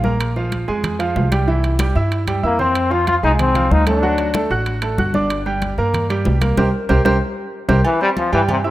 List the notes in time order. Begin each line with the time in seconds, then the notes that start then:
Already playing: A#1
0.04 A#3 A#4 A#5, high conga
0.20 high conga, high timbale
0.36 F3 F4 F5, high conga
0.52 high conga, high timbale
0.68 F2 G#3 G#4 G#5, high conga
0.84 high conga, low conga, high timbale
0.99 F3 F4 F5, high conga, high timbale
1.16 C2, high conga, low timbale
1.32 G3 G4 G5, high conga, high timbale
1.48 E3 E4 E5, high conga
1.64 high conga, high timbale
1.79 G3 G4 G5, high conga, high timbale
1.95 G2 E4 E5 E6, high conga
2.12 high conga, high timbale
2.27 G3 G4 G5, high conga, high timbale
2.43 F2 A#3 E4 E5 E6
2.59 C4 C5 C6, low conga
2.75 high conga, high timbale
2.91 F3 F4 F5, high conga
3.07 F4, high conga, high timbale
3.23 C2 G#3 D#4 G#4 G#5, high conga
3.39 C4, high conga, low conga, high timbale
3.55 F3 F4 F5, high conga, low conga, high timbale
3.71 D2 D#4, high conga
3.87 A3 D4 A4 A5, high conga, high timbale
4.02 F#3 F#4 F#5, high conga
4.18 high conga, high timbale
4.34 A3 A4 A5, high conga, high timbale
4.50 A1 F#4 F#5 F#6, high conga
4.66 high conga, high timbale
4.82 A3 A4 A5, high conga, high timbale
4.98 G1 F#4 F#5 F#6, high conga
5.14 D4 D5 D6, high conga
5.30 high conga, high timbale
5.46 G3 G4 G5, high conga
5.62 high conga, high timbale
5.78 G2 A#3 A#4 A#5, high conga
5.94 high conga, low conga, high timbale
6.10 G3 G4 G5, high conga, high timbale
6.25 C2, high conga, low timbale
6.41 A#3 A#4 A#5, high conga, high timbale
6.57 C2 G4 A#4 C5, high conga, high timbale
6.89 C2 G4 A#4 C5, high conga, high timbale
7.05 C2 G4 A#4 C5, high conga, high timbale
7.68 C2 G4 A#4 C5, high conga, high timbale
7.85 E3, high conga, low agogo
8.01 G3 C4 C5 C6, high conga
8.17 F3, high conga, low agogo
8.32 G2 E3 G3 G4 G5, high conga, low agogo
8.48 C3, high conga, low conga, low agogo
8.64 C3 E4 E5 E6, high conga